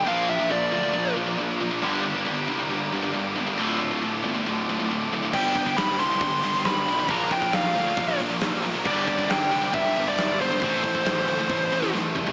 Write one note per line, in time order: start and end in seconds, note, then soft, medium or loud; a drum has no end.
0.00 8.83 D5 medium
0.00 8.83 D6 medium
0.06 0.46 A#1 medium
0.06 0.27 A#2 loud
0.06 0.27 F3 medium
0.06 0.27 A#3 loud
0.06 1.83 D4 loud
0.06 1.81 F4 medium
0.06 1.82 F4 medium
0.06 1.82 A#4 loud
0.06 0.27 F5 loud
0.06 1.81 A#5 medium
0.28 0.38 A#2 medium
0.28 0.38 F3 medium
0.28 0.49 E5 medium
0.39 0.49 A#2 medium
0.39 0.49 F3 loud
0.50 0.69 A#1 loud
0.50 0.70 A#2 medium
0.50 0.70 F3 loud
0.50 1.13 D5 medium
0.71 0.91 D2 medium
0.71 0.82 A#2 medium
0.71 0.82 F3 medium
0.83 0.92 A#2 medium
0.83 0.93 F3 medium
0.93 1.13 A#1 medium
0.93 1.13 A#2 medium
0.93 1.14 F3 loud
1.16 1.35 A#1 medium
1.16 1.26 A#2 medium
1.16 1.26 F3 medium
1.27 1.37 A#2 medium
1.27 1.37 F3 medium
1.38 1.58 A#1 medium
1.38 1.58 A#2 medium
1.38 1.58 F3 medium
1.61 1.80 A#1 loud
1.61 1.70 A#2 medium
1.61 1.70 F3 medium
1.71 1.81 A#2 medium
1.71 1.82 F3 medium
1.82 2.22 G1 medium
1.82 2.03 G2 medium
1.82 2.02 D3 loud
1.82 2.03 G3 loud
1.82 3.57 A#3 loud
1.82 5.34 D4 loud
1.82 3.56 G4 medium
1.82 3.58 G4 medium
1.82 3.56 A#5 medium
2.04 2.14 G2 medium
2.04 2.14 D3 medium
2.15 2.25 G2 medium
2.15 2.25 D3 medium
2.26 2.47 G1 medium
2.26 2.46 G2 medium
2.26 2.46 D3 medium
2.48 2.69 C2 medium
2.48 2.58 G2 medium
2.48 2.58 D3 medium
2.59 2.68 G2 medium
2.59 2.69 D3 medium
2.69 2.91 G1 medium
2.69 2.89 G2 medium
2.69 2.90 D3 medium
2.92 3.12 G1 medium
2.92 3.01 G2 medium
2.92 3.01 D3 medium
3.02 3.12 G2 medium
3.02 3.13 D3 loud
3.14 3.35 G1 medium
3.14 3.34 G2 medium
3.14 3.34 D3 medium
3.36 3.57 G1 loud
3.36 3.46 G2 medium
3.36 3.46 D3 medium
3.47 3.57 G2 medium
3.47 3.58 D3 medium
3.57 3.99 D1 medium
3.57 3.78 D2 loud
3.57 3.79 A2 loud
3.57 3.79 D3 loud
3.57 5.34 A3 medium
3.57 5.33 F4 medium
3.57 5.33 A5 medium
3.61 5.34 F4 loud
3.80 3.90 D2 medium
3.80 3.90 A2 medium
3.91 4.01 D2 medium
3.91 4.01 A2 loud
4.02 4.23 D1 medium
4.02 4.22 D2 medium
4.02 4.22 A2 medium
4.24 4.44 G1 medium
4.24 4.34 D2 medium
4.24 4.33 A2 medium
4.34 4.45 D2 medium
4.34 4.45 A2 medium
4.46 4.66 D1 medium
4.46 4.66 D2 medium
4.46 4.66 A2 loud
4.69 4.88 D1 medium
4.69 4.79 D2 medium
4.69 4.78 A2 medium
4.79 4.89 D2 medium
4.79 4.90 A2 medium
4.90 5.10 D1 medium
4.90 5.10 D2 medium
4.90 5.10 A2 medium
5.11 5.31 D1 medium
5.11 5.22 D2 medium
5.11 5.21 A2 medium
5.23 5.33 D2 medium
5.23 5.34 A2 medium
5.33 5.74 G1 loud
5.33 5.55 G2 loud
5.33 5.55 D3 loud
5.33 5.55 G3 loud
5.33 7.10 B3 medium
5.33 7.11 D4 loud
5.33 7.08 G4 medium
5.33 7.10 G4 loud
5.33 7.08 G5 medium
5.33 5.80 G5 loud
5.33 kick loud
5.33 crash loud
5.55 5.67 G2 medium
5.55 5.66 D3 medium
5.55 kick loud
5.55 open hi-hat medium
5.66 5.77 G2 medium
5.66 5.77 D3 medium
5.66 kick loud
5.77 5.98 G1 loud
5.77 5.98 G2 medium
5.77 5.98 D3 medium
5.77 5.99 B5 loud
5.77 snare loud
5.77 open hi-hat loud
5.99 6.19 C2 medium
5.99 6.10 G2 medium
5.99 6.10 D3 medium
5.99 6.62 C6 loud
5.99 open hi-hat medium
6.11 6.20 G2 medium
6.11 6.20 D3 medium
6.21 6.41 G1 medium
6.21 6.42 G2 medium
6.21 6.42 D3 medium
6.21 kick loud
6.21 open hi-hat medium
6.33 snare soft
6.42 6.63 G1 medium
6.42 6.54 G2 medium
6.42 6.54 D3 medium
6.42 open hi-hat medium
6.55 6.64 G2 medium
6.55 6.65 D3 medium
6.64 6.85 G1 medium
6.64 6.85 G2 medium
6.64 6.86 D3 medium
6.64 7.07 B5 loud
6.64 snare loud
6.64 open hi-hat medium
6.87 7.07 B1 loud
6.87 6.98 G2 medium
6.87 6.97 D3 medium
6.87 open hi-hat medium
6.98 7.09 G2 medium
6.98 7.10 D3 medium
7.08 7.49 A#1 medium
7.08 7.30 A#2 loud
7.08 7.30 F3 medium
7.08 7.31 A#3 loud
7.08 8.85 D4 loud
7.08 8.84 F4 medium
7.08 8.85 F4 medium
7.08 8.86 A#4 loud
7.08 10.58 A#5 medium
7.08 7.33 A#5 loud
7.08 kick loud
7.08 open hi-hat medium
7.31 7.43 A#2 medium
7.31 7.42 F3 medium
7.31 7.55 G5 medium
7.31 kick loud
7.31 open hi-hat medium
7.42 7.52 A#2 medium
7.42 7.52 F3 medium
7.42 kick medium
7.52 7.73 A#1 loud
7.52 7.73 A#2 medium
7.52 7.74 F3 medium
7.52 8.17 F5 medium
7.52 snare loud
7.52 open hi-hat medium
7.75 7.96 D2 medium
7.75 7.87 A#2 medium
7.75 7.86 F3 medium
7.75 open hi-hat medium
7.87 7.96 A#2 medium
7.87 7.96 F3 medium
7.97 8.17 A#1 medium
7.97 8.18 A#2 medium
7.97 8.18 F3 medium
7.97 kick loud
7.97 open hi-hat medium
8.19 8.40 A#1 medium
8.19 8.29 A#2 medium
8.19 8.28 F3 medium
8.19 open hi-hat medium
8.29 8.40 A#2 medium
8.29 8.40 F3 loud
8.41 8.62 A#1 medium
8.41 8.61 A#2 medium
8.41 8.61 F3 medium
8.41 snare loud
8.41 open hi-hat medium
8.63 8.84 A#1 loud
8.63 8.73 A#2 medium
8.63 8.73 F3 loud
8.63 open hi-hat medium
8.74 8.84 A#2 medium
8.74 8.85 F3 medium
8.84 9.26 G1 medium
8.84 9.06 G2 medium
8.84 9.06 D3 loud
8.84 9.07 G3 loud
8.84 10.61 A#3 medium
8.84 10.61 D4 loud
8.84 10.60 G4 medium
8.84 10.62 G4 loud
8.84 10.60 D5 medium
8.84 9.32 D5 loud
8.84 10.60 D6 medium
8.84 kick loud
8.84 crash loud
9.07 9.17 G2 medium
9.07 9.16 D3 medium
9.07 kick medium
9.07 open hi-hat medium
9.18 9.27 G2 medium
9.18 9.28 D3 medium
9.18 kick loud
9.29 9.50 G1 medium
9.29 9.49 G2 medium
9.29 9.49 D3 medium
9.29 9.71 G5 loud
9.29 snare loud
9.29 open hi-hat loud
9.51 9.72 C2 medium
9.51 9.62 G2 medium
9.51 9.61 D3 medium
9.51 open hi-hat medium
9.62 9.72 G2 medium
9.62 9.72 D3 medium
9.73 9.94 G1 medium
9.73 9.93 G2 medium
9.73 9.94 D3 loud
9.73 10.05 E5 loud
9.73 kick loud
9.73 open hi-hat medium
9.86 snare soft
9.96 10.16 G1 loud
9.96 10.07 G2 medium
9.96 10.06 D3 medium
9.96 open hi-hat medium
10.07 10.17 G2 medium
10.07 10.18 D3 medium
10.07 10.41 D5 medium
10.18 10.38 G1 medium
10.18 10.38 G2 medium
10.18 10.38 D3 medium
10.18 snare medium
10.18 open hi-hat medium
10.40 10.60 G1 loud
10.40 10.51 G2 medium
10.40 10.50 D3 medium
10.40 11.90 C5 medium
10.40 open hi-hat medium
10.52 10.61 G2 medium
10.52 10.62 D3 medium
10.62 11.02 A1 medium
10.62 10.83 A2 medium
10.62 10.83 E3 loud
10.62 10.83 A3 loud
10.62 12.32 C4 loud
10.62 12.32 E4 medium
10.62 12.32 E4 loud
10.62 12.32 A4 loud
10.62 12.32 C5 medium
10.62 12.32 A5 medium
10.62 12.32 C6 medium
10.62 kick loud
10.62 open hi-hat medium
10.84 10.94 A2 medium
10.84 10.94 E3 medium
10.84 kick loud
10.84 open hi-hat medium
10.95 11.04 A2 medium
10.95 11.05 E3 medium
10.95 kick medium
11.05 11.26 A1 medium
11.05 11.25 A2 medium
11.05 11.26 E3 medium
11.05 snare loud
11.05 open hi-hat medium
11.27 11.47 D2 medium
11.27 11.38 A2 medium
11.27 11.37 E3 medium
11.27 open hi-hat medium
11.39 11.49 A2 medium
11.39 11.49 E3 medium
11.50 11.70 A1 loud
11.50 11.70 A2 medium
11.50 11.70 E3 medium
11.50 kick loud
11.50 open hi-hat medium
11.72 11.92 A1 loud
11.72 11.81 A2 medium
11.72 11.81 E3 medium
11.72 open hi-hat medium
11.82 11.92 A2 medium
11.82 11.92 E3 loud
11.93 12.13 A1 medium
11.93 12.13 A2 medium
11.93 12.13 E3 loud
11.93 snare medium
12.15 12.32 C2 loud
12.15 12.26 A2 medium
12.15 12.25 E3 medium
12.15 mid tom medium
12.26 12.32 A2 medium
12.26 12.32 E3 medium
12.26 floor tom loud